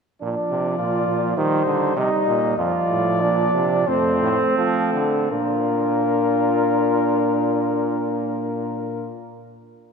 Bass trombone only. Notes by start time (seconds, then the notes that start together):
0.22 A#2
0.51 C3
0.79 A#2
1.08 A#2
1.37 D#3
1.67 D3
1.97 C3
2.28 A#2
2.58 F2
2.89 A2
3.21 A#2
3.55 C3
3.88 F2
4.22 A2
4.57 F3
4.93 D3
5.31 A#2